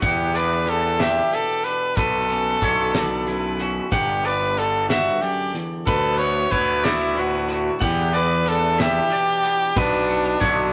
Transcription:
0.00 1.19 E2 medium
0.00 1.94 E2 medium
0.00 0.66 D3 medium
0.00 0.39 E4 medium
0.00 0.34 F#5 medium
0.00 kick medium
0.00 closed hi-hat medium
0.06 0.38 G4 medium
0.35 1.00 D4 medium
0.35 0.71 B4 medium
0.35 0.99 D5 medium
0.35 closed hi-hat medium
0.66 1.93 E3 medium
0.66 1.31 G4 medium
0.66 1.03 A4 medium
0.66 closed hi-hat medium
1.00 1.65 D4 medium
1.00 1.36 G4 medium
1.00 1.33 E5 medium
1.00 snare medium
1.00 closed hi-hat medium
1.32 1.93 B2 medium
1.32 1.93 G4 medium
1.32 1.65 A4 medium
1.32 1.97 D5 medium
1.32 closed hi-hat medium
1.64 2.30 D4 medium
1.64 1.98 B4 medium
1.64 closed hi-hat medium
1.96 2.56 B1 medium
1.96 2.62 B2 medium
1.96 3.59 A4 medium
1.96 2.62 B4 medium
1.96 kick loud
1.96 closed hi-hat medium
2.29 2.95 C#4 medium
2.29 closed hi-hat medium
2.62 3.79 B1 medium
2.62 4.55 D3 medium
2.62 3.26 E4 medium
2.62 2.95 C#5 medium
2.62 kick medium
2.62 closed hi-hat medium
2.94 3.28 D5 medium
2.94 snare medium
2.94 closed hi-hat medium
3.27 3.88 F#2 medium
3.27 3.88 E4 medium
3.27 3.60 B4 medium
3.27 closed hi-hat medium
3.59 3.88 C#4 medium
3.59 3.93 F#4 medium
3.59 closed hi-hat medium
3.91 5.09 G1 medium
3.91 4.89 G2 medium
3.91 4.27 G4 medium
3.91 4.25 F#5 medium
3.91 kick loud
3.91 closed hi-hat medium
4.23 6.19 B3 medium
4.23 4.60 B4 loud
4.23 4.90 D5 medium
4.23 closed hi-hat medium
4.56 6.51 D3 medium
4.56 4.88 A4 medium
4.56 closed hi-hat medium
4.89 5.22 G2 medium
4.89 5.23 F#4 medium
4.89 5.22 E5 medium
4.89 snare loud
4.89 closed hi-hat medium
5.21 5.54 F#2 medium
5.21 5.54 G4 medium
5.21 5.87 D5 medium
5.21 closed hi-hat medium
5.54 5.86 E2 medium
5.54 closed hi-hat medium
5.86 7.80 D2 medium
5.86 6.45 D2 medium
5.86 6.20 A4 medium
5.86 6.51 B4 medium
5.86 kick medium
5.86 closed hi-hat medium
6.18 6.84 B3 medium
6.18 6.53 C#5 loud
6.18 closed hi-hat medium
6.51 7.69 D2 medium
6.51 8.45 D3 medium
6.51 7.17 E4 medium
6.51 6.87 B4 medium
6.51 6.83 C#5 medium
6.51 kick medium
6.51 closed hi-hat medium
6.84 7.01 A3 medium
6.84 7.21 E4 medium
6.84 7.16 D5 medium
6.84 snare loud
6.84 closed hi-hat medium
7.01 7.49 B3 soft
7.16 7.82 A2 medium
7.16 8.45 E4 medium
7.16 7.50 F#4 medium
7.16 7.49 B4 medium
7.16 closed hi-hat medium
7.49 8.12 B3 medium
7.49 7.81 F#4 medium
7.49 closed hi-hat medium
7.81 9.72 E2 medium
7.81 8.98 E2 medium
7.81 8.17 G4 medium
7.81 8.13 F#5 medium
7.81 kick loud
7.81 closed hi-hat medium
8.13 8.78 B3 medium
8.13 8.50 B4 loud
8.13 8.78 D5 medium
8.13 closed hi-hat medium
8.45 9.72 E3 medium
8.45 9.10 D4 medium
8.45 8.82 A4 medium
8.45 closed hi-hat medium
8.78 9.42 B3 medium
8.78 9.80 G4 loud
8.78 9.11 E5 medium
8.78 snare loud
8.78 closed hi-hat medium
9.09 9.71 B2 medium
9.09 10.40 D4 medium
9.09 9.76 D5 medium
9.09 closed hi-hat medium
9.43 9.72 B3 medium
9.43 closed hi-hat medium
9.76 10.35 B1 medium
9.76 10.41 B2 medium
9.76 10.73 D4 medium
9.76 10.40 B4 loud
9.76 kick loud
9.76 closed hi-hat medium
10.08 10.25 A3 medium
10.08 closed hi-hat medium
10.25 10.73 B3 medium
10.40 10.73 B1 medium
10.40 10.73 D3 medium
10.40 10.73 E4 medium
10.40 10.73 C#5 medium
10.40 kick medium
10.40 closed hi-hat medium

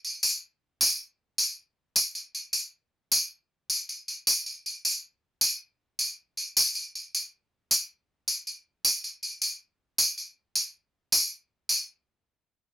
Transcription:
0.05 tambourine soft
0.23 tambourine medium
0.81 tambourine medium
1.38 tambourine medium
1.96 tambourine medium
2.15 tambourine soft
2.35 tambourine soft
2.53 tambourine medium
3.12 tambourine medium
3.70 tambourine medium
3.89 tambourine soft
4.08 tambourine soft
4.27 tambourine medium
4.46 tambourine soft
4.66 tambourine soft
4.85 tambourine medium
5.41 tambourine medium
5.99 tambourine medium
6.37 tambourine soft
6.57 tambourine medium
6.75 tambourine soft
6.95 tambourine soft
7.15 tambourine medium
7.71 tambourine medium
8.28 tambourine medium
8.47 tambourine soft
8.85 tambourine medium
9.04 tambourine soft
9.23 tambourine soft
9.42 tambourine medium
9.98 tambourine medium
10.18 tambourine soft
10.55 tambourine medium
11.12 tambourine medium
11.69 tambourine medium

